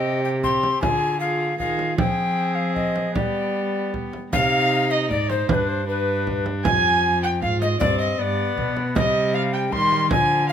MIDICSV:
0, 0, Header, 1, 6, 480
1, 0, Start_track
1, 0, Key_signature, -3, "minor"
1, 0, Tempo, 388853
1, 1016, Time_signature, 3, 2, 24, 8
1, 6306, Tempo, 384862
1, 13061, End_track
2, 0, Start_track
2, 0, Title_t, "Recorder"
2, 0, Program_c, 0, 74
2, 0, Note_on_c, 0, 75, 86
2, 250, Note_off_c, 0, 75, 0
2, 303, Note_on_c, 0, 79, 68
2, 377, Note_off_c, 0, 79, 0
2, 539, Note_on_c, 0, 84, 91
2, 1003, Note_off_c, 0, 84, 0
2, 1010, Note_on_c, 0, 80, 95
2, 1477, Note_off_c, 0, 80, 0
2, 1484, Note_on_c, 0, 77, 80
2, 1956, Note_off_c, 0, 77, 0
2, 1962, Note_on_c, 0, 77, 83
2, 2434, Note_off_c, 0, 77, 0
2, 2449, Note_on_c, 0, 79, 106
2, 3151, Note_on_c, 0, 77, 69
2, 3170, Note_off_c, 0, 79, 0
2, 3383, Note_off_c, 0, 77, 0
2, 3390, Note_on_c, 0, 75, 77
2, 3873, Note_off_c, 0, 75, 0
2, 3892, Note_on_c, 0, 74, 74
2, 4844, Note_off_c, 0, 74, 0
2, 5342, Note_on_c, 0, 77, 120
2, 6061, Note_on_c, 0, 75, 88
2, 6080, Note_off_c, 0, 77, 0
2, 6286, Note_off_c, 0, 75, 0
2, 6293, Note_on_c, 0, 74, 95
2, 6535, Note_off_c, 0, 74, 0
2, 6545, Note_on_c, 0, 72, 85
2, 6781, Note_off_c, 0, 72, 0
2, 6793, Note_on_c, 0, 72, 87
2, 6855, Note_on_c, 0, 71, 94
2, 6867, Note_off_c, 0, 72, 0
2, 7027, Note_on_c, 0, 72, 85
2, 7046, Note_off_c, 0, 71, 0
2, 7265, Note_off_c, 0, 72, 0
2, 7272, Note_on_c, 0, 71, 72
2, 7978, Note_off_c, 0, 71, 0
2, 8230, Note_on_c, 0, 80, 100
2, 8900, Note_off_c, 0, 80, 0
2, 8960, Note_on_c, 0, 79, 81
2, 9190, Note_off_c, 0, 79, 0
2, 9200, Note_on_c, 0, 77, 88
2, 9275, Note_off_c, 0, 77, 0
2, 9438, Note_on_c, 0, 75, 82
2, 9513, Note_off_c, 0, 75, 0
2, 9661, Note_on_c, 0, 74, 105
2, 9899, Note_off_c, 0, 74, 0
2, 9905, Note_on_c, 0, 75, 97
2, 10140, Note_on_c, 0, 74, 81
2, 10158, Note_off_c, 0, 75, 0
2, 10861, Note_off_c, 0, 74, 0
2, 11102, Note_on_c, 0, 75, 98
2, 11586, Note_on_c, 0, 77, 95
2, 11605, Note_off_c, 0, 75, 0
2, 11825, Note_on_c, 0, 79, 89
2, 11843, Note_off_c, 0, 77, 0
2, 12065, Note_on_c, 0, 84, 106
2, 12084, Note_off_c, 0, 79, 0
2, 12535, Note_off_c, 0, 84, 0
2, 12543, Note_on_c, 0, 80, 111
2, 13010, Note_off_c, 0, 80, 0
2, 13017, Note_on_c, 0, 77, 95
2, 13061, Note_off_c, 0, 77, 0
2, 13061, End_track
3, 0, Start_track
3, 0, Title_t, "Violin"
3, 0, Program_c, 1, 40
3, 0, Note_on_c, 1, 67, 72
3, 486, Note_off_c, 1, 67, 0
3, 537, Note_on_c, 1, 67, 57
3, 1005, Note_off_c, 1, 67, 0
3, 1028, Note_on_c, 1, 68, 64
3, 1481, Note_off_c, 1, 68, 0
3, 1488, Note_on_c, 1, 68, 60
3, 1957, Note_off_c, 1, 68, 0
3, 1976, Note_on_c, 1, 68, 56
3, 2441, Note_off_c, 1, 68, 0
3, 2453, Note_on_c, 1, 68, 72
3, 3886, Note_on_c, 1, 67, 62
3, 3904, Note_off_c, 1, 68, 0
3, 5103, Note_off_c, 1, 67, 0
3, 5351, Note_on_c, 1, 77, 103
3, 6019, Note_off_c, 1, 77, 0
3, 6065, Note_on_c, 1, 75, 73
3, 6299, Note_off_c, 1, 75, 0
3, 6305, Note_on_c, 1, 74, 71
3, 6538, Note_on_c, 1, 72, 76
3, 6557, Note_off_c, 1, 74, 0
3, 6783, Note_on_c, 1, 71, 86
3, 6802, Note_off_c, 1, 72, 0
3, 7022, Note_off_c, 1, 71, 0
3, 7030, Note_on_c, 1, 72, 65
3, 7256, Note_off_c, 1, 72, 0
3, 7264, Note_on_c, 1, 71, 68
3, 7974, Note_off_c, 1, 71, 0
3, 8214, Note_on_c, 1, 80, 100
3, 8892, Note_off_c, 1, 80, 0
3, 8948, Note_on_c, 1, 79, 77
3, 9044, Note_off_c, 1, 79, 0
3, 9189, Note_on_c, 1, 77, 80
3, 9424, Note_off_c, 1, 77, 0
3, 9435, Note_on_c, 1, 75, 77
3, 9667, Note_off_c, 1, 75, 0
3, 9673, Note_on_c, 1, 74, 94
3, 9905, Note_off_c, 1, 74, 0
3, 9923, Note_on_c, 1, 75, 69
3, 10168, Note_on_c, 1, 74, 76
3, 10187, Note_off_c, 1, 75, 0
3, 10875, Note_off_c, 1, 74, 0
3, 11113, Note_on_c, 1, 75, 88
3, 11555, Note_off_c, 1, 75, 0
3, 11592, Note_on_c, 1, 77, 80
3, 11686, Note_off_c, 1, 77, 0
3, 11826, Note_on_c, 1, 79, 88
3, 11921, Note_off_c, 1, 79, 0
3, 12062, Note_on_c, 1, 84, 92
3, 12532, Note_off_c, 1, 84, 0
3, 12548, Note_on_c, 1, 80, 94
3, 13010, Note_off_c, 1, 80, 0
3, 13018, Note_on_c, 1, 77, 86
3, 13061, Note_off_c, 1, 77, 0
3, 13061, End_track
4, 0, Start_track
4, 0, Title_t, "Viola"
4, 0, Program_c, 2, 41
4, 0, Note_on_c, 2, 60, 58
4, 486, Note_off_c, 2, 60, 0
4, 534, Note_on_c, 2, 60, 58
4, 1009, Note_on_c, 2, 65, 56
4, 1028, Note_off_c, 2, 60, 0
4, 1477, Note_off_c, 2, 65, 0
4, 1484, Note_on_c, 2, 65, 60
4, 1956, Note_off_c, 2, 65, 0
4, 1970, Note_on_c, 2, 65, 56
4, 2453, Note_on_c, 2, 60, 61
4, 2471, Note_off_c, 2, 65, 0
4, 3881, Note_off_c, 2, 60, 0
4, 3889, Note_on_c, 2, 59, 51
4, 5080, Note_off_c, 2, 59, 0
4, 5340, Note_on_c, 2, 63, 65
4, 6787, Note_on_c, 2, 62, 58
4, 6806, Note_off_c, 2, 63, 0
4, 7260, Note_off_c, 2, 62, 0
4, 7267, Note_on_c, 2, 62, 60
4, 8235, Note_on_c, 2, 65, 61
4, 8253, Note_off_c, 2, 62, 0
4, 9192, Note_off_c, 2, 65, 0
4, 9199, Note_on_c, 2, 65, 66
4, 9664, Note_off_c, 2, 65, 0
4, 9678, Note_on_c, 2, 60, 66
4, 10154, Note_on_c, 2, 59, 74
4, 10173, Note_off_c, 2, 60, 0
4, 11102, Note_on_c, 2, 55, 73
4, 11120, Note_off_c, 2, 59, 0
4, 12052, Note_off_c, 2, 55, 0
4, 12060, Note_on_c, 2, 55, 71
4, 12547, Note_on_c, 2, 53, 65
4, 12566, Note_off_c, 2, 55, 0
4, 13003, Note_off_c, 2, 53, 0
4, 13010, Note_on_c, 2, 53, 72
4, 13061, Note_off_c, 2, 53, 0
4, 13061, End_track
5, 0, Start_track
5, 0, Title_t, "Cello"
5, 0, Program_c, 3, 42
5, 0, Note_on_c, 3, 48, 71
5, 967, Note_off_c, 3, 48, 0
5, 1024, Note_on_c, 3, 50, 62
5, 1954, Note_off_c, 3, 50, 0
5, 1971, Note_on_c, 3, 51, 54
5, 2439, Note_off_c, 3, 51, 0
5, 2450, Note_on_c, 3, 53, 65
5, 3894, Note_on_c, 3, 55, 54
5, 3912, Note_off_c, 3, 53, 0
5, 5107, Note_off_c, 3, 55, 0
5, 5340, Note_on_c, 3, 48, 77
5, 6302, Note_on_c, 3, 44, 64
5, 6321, Note_off_c, 3, 48, 0
5, 6778, Note_off_c, 3, 44, 0
5, 6786, Note_on_c, 3, 43, 73
5, 8230, Note_on_c, 3, 41, 71
5, 8249, Note_off_c, 3, 43, 0
5, 9190, Note_on_c, 3, 44, 69
5, 9209, Note_off_c, 3, 41, 0
5, 9669, Note_off_c, 3, 44, 0
5, 9675, Note_on_c, 3, 43, 72
5, 10142, Note_off_c, 3, 43, 0
5, 10155, Note_on_c, 3, 43, 76
5, 10620, Note_off_c, 3, 43, 0
5, 10631, Note_on_c, 3, 47, 68
5, 11114, Note_on_c, 3, 48, 77
5, 11133, Note_off_c, 3, 47, 0
5, 12062, Note_on_c, 3, 51, 72
5, 12081, Note_off_c, 3, 48, 0
5, 12542, Note_off_c, 3, 51, 0
5, 12548, Note_on_c, 3, 50, 85
5, 13061, Note_off_c, 3, 50, 0
5, 13061, End_track
6, 0, Start_track
6, 0, Title_t, "Frame drum"
6, 537, Note_on_c, 9, 64, 46
6, 660, Note_off_c, 9, 64, 0
6, 782, Note_on_c, 9, 64, 50
6, 905, Note_off_c, 9, 64, 0
6, 1021, Note_on_c, 9, 64, 86
6, 1145, Note_off_c, 9, 64, 0
6, 1971, Note_on_c, 9, 64, 39
6, 2095, Note_off_c, 9, 64, 0
6, 2210, Note_on_c, 9, 64, 47
6, 2333, Note_off_c, 9, 64, 0
6, 2448, Note_on_c, 9, 64, 84
6, 2572, Note_off_c, 9, 64, 0
6, 3411, Note_on_c, 9, 64, 44
6, 3534, Note_off_c, 9, 64, 0
6, 3650, Note_on_c, 9, 64, 46
6, 3773, Note_off_c, 9, 64, 0
6, 3894, Note_on_c, 9, 64, 75
6, 4018, Note_off_c, 9, 64, 0
6, 4862, Note_on_c, 9, 64, 44
6, 4986, Note_off_c, 9, 64, 0
6, 5103, Note_on_c, 9, 64, 44
6, 5226, Note_off_c, 9, 64, 0
6, 5344, Note_on_c, 9, 64, 83
6, 5467, Note_off_c, 9, 64, 0
6, 6305, Note_on_c, 9, 64, 46
6, 6430, Note_off_c, 9, 64, 0
6, 6541, Note_on_c, 9, 64, 53
6, 6666, Note_off_c, 9, 64, 0
6, 6782, Note_on_c, 9, 64, 84
6, 6907, Note_off_c, 9, 64, 0
6, 7755, Note_on_c, 9, 64, 49
6, 7880, Note_off_c, 9, 64, 0
6, 7990, Note_on_c, 9, 64, 52
6, 8114, Note_off_c, 9, 64, 0
6, 8227, Note_on_c, 9, 64, 91
6, 8352, Note_off_c, 9, 64, 0
6, 9193, Note_on_c, 9, 64, 47
6, 9317, Note_off_c, 9, 64, 0
6, 9434, Note_on_c, 9, 64, 52
6, 9559, Note_off_c, 9, 64, 0
6, 9675, Note_on_c, 9, 64, 92
6, 9800, Note_off_c, 9, 64, 0
6, 10631, Note_on_c, 9, 64, 46
6, 10756, Note_off_c, 9, 64, 0
6, 10868, Note_on_c, 9, 64, 46
6, 10993, Note_off_c, 9, 64, 0
6, 11111, Note_on_c, 9, 64, 89
6, 11236, Note_off_c, 9, 64, 0
6, 12063, Note_on_c, 9, 64, 47
6, 12187, Note_off_c, 9, 64, 0
6, 12304, Note_on_c, 9, 64, 51
6, 12429, Note_off_c, 9, 64, 0
6, 12540, Note_on_c, 9, 64, 93
6, 12665, Note_off_c, 9, 64, 0
6, 13061, End_track
0, 0, End_of_file